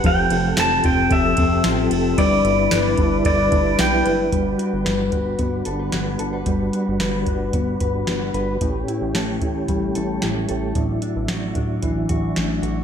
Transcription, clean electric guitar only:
X:1
M:4/4
L:1/16
Q:1/4=112
K:G
V:1 name="Clean electric guitar"
=F,2 =F2 A2 C2 A2 C2 F2 A2 | G,2 E2 B2 D2 A B D2 D E B2 | G,2 F2 B2 F2 B,2 A B F2 A B | G,2 F2 B2 F2 B,2 B2 F2 B2 |
A,,2 E2 A2 E2 G,2 A2 E2 A2 | A,,2 D2 F2 D2 E,2 F2 D2 F2 |]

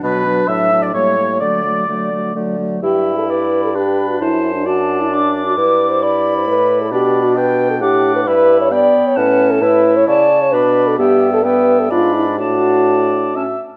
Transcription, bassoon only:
X:1
M:3/4
L:1/8
Q:1/4=132
K:D
V:1 name="Bassoon" clef=bass
B,,2 A,,2 A,,2 | D,2 D,2 D,2 | [K:G] G,,6 | F,,6 |
G,,4 A,,2 | B,,4 A,,2 | [K:D] G,,4 A,,2 | A,,2 C,2 B,,2 |
G,,4 ^G,,2 | A,,4- A,, z |]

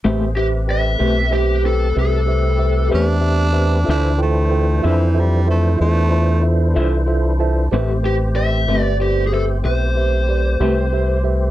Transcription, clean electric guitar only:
X:1
M:12/8
L:1/8
Q:3/8=62
K:Am
V:1 name="Clean electric guitar"
[A,CGB] z2 [A,CGB] z4 z [A,CGB] z2 | [DFce] z2 [DFce] z4 z [DFce] z2 | [A,CGB] z2 [A,CGB] z4 z [A,CGB] z2 |]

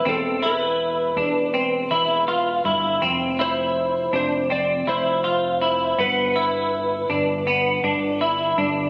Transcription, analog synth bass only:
X:1
M:4/4
L:1/8
Q:1/4=81
K:C
V:1 name="Analog synth bass" clef=bass
E,,,3 E,,,2 E,,,2 G,,, | F,,,3 F,,,2 F,,,3 | G,,,3 G,,,2 G,,,2 G,,, |]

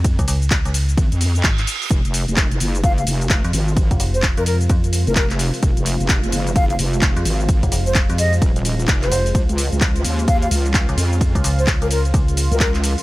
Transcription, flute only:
X:1
M:4/4
L:1/16
Q:"Swing 16ths" 1/4=129
K:Fphr
V:1 name="Flute"
z16 | z8 f f z6 | z3 c z B B z4 B B z3 | z8 f f z6 |
z3 c z2 e z6 c3 | z8 f f z6 | z3 c z B B z4 B B z3 |]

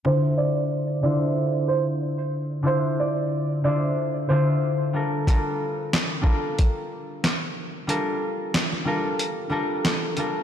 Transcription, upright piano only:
X:1
M:4/4
L:1/16
Q:"Swing 16ths" 1/4=92
K:Dm
V:1 name="Upright piano"
c2 d4 d2 z2 c z4 z | c2 d4 d2 z2 c z4 z | z16 | z16 |]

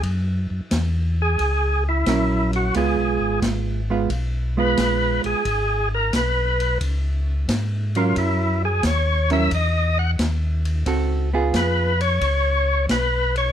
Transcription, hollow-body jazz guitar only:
X:1
M:4/4
L:1/8
Q:"Swing" 1/4=89
K:Dbmix
V:1 name="Hollow-body jazz guitar"
z6 [G,D_FB]2 | [A,CF]3 [A,CF] z [A,CF]3 | z6 z [G,DB]- | [G,DB]2 z [G,D_FB] z4 |
[=CG=A] [_CF_A]2 z4 z |]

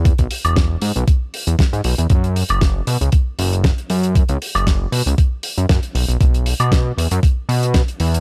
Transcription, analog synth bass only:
X:1
M:4/4
L:1/16
Q:"Swing 16ths" 1/4=117
K:Bmix
V:1 name="Analog synth bass" clef=bass
E,, B,,, z E,,,3 G,, B,,, z3 E,, z G,, B,,, E,, | F,,3 F,,,3 B,, C,, z2 F,,,3 z F,,2- | F,, C,, z F,,,3 B,, C,, z3 F,, F,, z B,,, B,,, | B,,,3 B,,3 E,, F,, z2 B,,3 z E,,2 |]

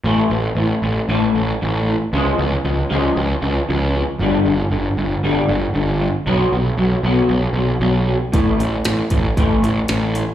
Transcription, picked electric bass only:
X:1
M:4/4
L:1/8
Q:1/4=116
K:Amix
V:1 name="Picked electric bass" clef=bass
A,,, A,,, A,,, A,,, A,,, A,,, A,,,2 | C,, C,, C,, C,, C,, C,, C,,2 | G,,, G,,, G,,, G,,, G,,, G,,, G,,,2 | B,,, B,,, B,,, B,,, B,,, B,,, B,,,2 |
A,,, A,,, A,,, A,,, A,,, A,,, A,,,2 |]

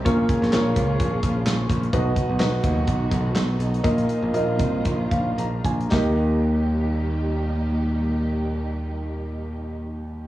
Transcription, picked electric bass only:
X:1
M:4/4
L:1/16
Q:"Swing 16ths" 1/4=116
K:Ebmix
V:1 name="Picked electric bass" clef=bass
B,,,2 z B,,, B,,,2 D,,2 B,,,2 B,,,2 B,,,2 B,,,2 | =B,,,2 z B,,, B,,,2 ^D,,2 B,,,2 B,,,2 B,,,2 B,,,2 | B,,,2 z B,,, B,,,2 C,,2 B,,,2 B,,,2 B,,,2 B,,,2 | E,,16- |
E,,16 |]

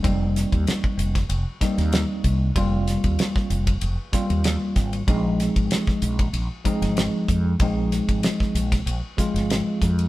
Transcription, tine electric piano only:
X:1
M:4/4
L:1/8
Q:"Swing 16ths" 1/4=95
K:Fm
V:1 name="Tine electric piano"
[G,B,CE]4 z [G,B,CE]3 | [G,B,CF]4 z [G,B,CF]3 | [F,A,CE]4 z [F,A,CE]3 | [F,A,CE]4 z [F,A,CF]3 |]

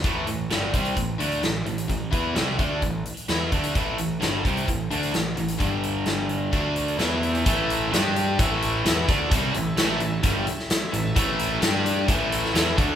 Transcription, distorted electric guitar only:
X:1
M:4/4
L:1/8
Q:1/4=130
K:Amix
V:1 name="Distorted electric guitar" clef=bass
[A,,E,A,] [A,,E,] [G,,D,G,] [=C,G,=C] [A,,E,] [D,A,D] [A,,E,] [A,,E,] | [A,,E,] [E,B,E] [=C,G,=C] [D,A,D] [A,,E,] z [E,B,E] [D,A,D] | [A,,E,A,] [A,,E,] [G,,D,G,] [=C,G,=C] [A,,E,] [D,A,D] [A,,E,] [A,,E,] | [G,,D,G,]4 [D,A,D]2 [E,B,E]2 |
[A,,E,A,]2 [G,DG]2 [A,,E,A,]2 [E,B,E] [D,A,D] | [=C,G,=C] [A,,E,] [A,,E,A,] [A,,E,] [G,,D,G,] z2 [A,,E,] | [A,,E,A,]2 [G,DG]2 [A,,E,A,]2 [E,B,E] [D,A,D] |]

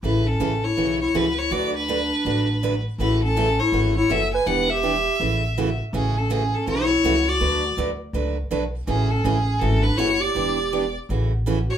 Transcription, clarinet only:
X:1
M:4/4
L:1/8
Q:"Swing" 1/4=163
K:A
V:1 name="Clarinet"
E C2 E2 E E E | F D6 z | E C2 E2 E A B | B =G3 z4 |
C C C C E3 F- | F2 z6 | C C C2 C D E =G- | =G3 z4 F |]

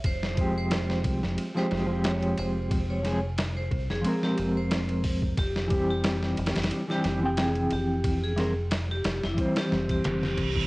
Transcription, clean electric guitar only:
X:1
M:4/4
L:1/16
Q:"Swing 16ths" 1/4=90
K:Fm
V:1 name="Clean electric guitar"
z2 [F,A,CG]6- [F,A,CG] [F,A,CG]2 [F,A,CG]4- [F,A,CG]- | [F,A,CG]2 [F,A,CA] z4 z [F,A,CB]8 | z2 [=E,G,CG]6- [E,G,CG] [E,G,CG]2 [E,Cg]4- [E,Cg]- | [=E,Cg]2 [E,G,CB] z4 z [E,G,Cc]8 |]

